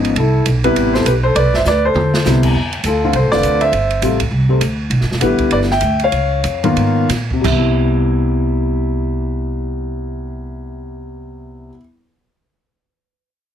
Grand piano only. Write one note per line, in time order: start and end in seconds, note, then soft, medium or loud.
0.00 0.14 C#3 medium
0.00 0.14 F3 medium
0.00 0.15 B3 medium
0.00 0.15 D#4 medium
0.17 0.45 E4 medium
0.17 0.44 A4 medium
0.64 1.03 C3 medium
0.64 1.03 G3 medium
0.64 1.03 B3 medium
0.64 1.04 E4 medium
0.64 0.93 G4 medium
0.64 0.95 B4 loud
0.94 1.05 A4 medium
0.94 1.04 C5 medium
1.06 1.13 G4 medium
1.06 1.11 B4 medium
1.23 1.35 A4 medium
1.23 1.34 C5 loud
1.36 1.53 B4 medium
1.36 1.54 D5 loud
1.55 1.61 C5 medium
1.55 1.60 E5 loud
1.68 1.84 B4 medium
1.68 1.83 D5 loud
1.85 2.40 A4 medium
1.85 2.39 C5 loud
2.25 2.54 C3 medium
2.25 2.55 G3 medium
2.25 2.55 B3 medium
2.25 2.55 E4 medium
2.86 3.03 F4 medium
2.86 3.12 A4 medium
3.04 3.13 D3 medium
3.04 3.13 A3 medium
3.04 3.13 C4 medium
3.04 3.13 F4 medium
3.15 3.32 A4 medium
3.15 3.33 C5 medium
3.32 3.70 D3 medium
3.32 3.71 A3 medium
3.32 3.71 C4 medium
3.32 3.71 F4 medium
3.32 3.60 B4 medium
3.32 3.62 D5 loud
3.61 4.17 C5 medium
3.61 4.16 E5 loud
4.03 4.18 C3 medium
4.03 4.19 G3 medium
4.03 4.19 A3 medium
4.03 4.19 F4 medium
4.49 4.60 C3 medium
4.49 4.60 G3 medium
4.49 4.60 A3 medium
4.49 4.60 C4 medium
5.21 5.65 D3 medium
5.21 5.66 G3 medium
5.21 5.66 B3 medium
5.21 5.66 E4 medium
5.21 5.50 G4 medium
5.21 5.49 B4 medium
5.52 5.58 B4 medium
5.52 5.57 D5 loud
5.72 5.99 E5 medium
5.72 6.02 G5 loud
6.04 7.07 C#5 medium
6.04 7.07 F5 medium
6.63 7.07 D#3 medium
6.63 7.07 A#3 medium
6.63 7.07 B3 medium
6.63 7.07 F4 medium
7.33 11.68 C3 medium
7.41 11.72 G3 medium
7.41 11.70 E5 medium
7.49 11.76 B3 medium
7.58 11.80 E4 medium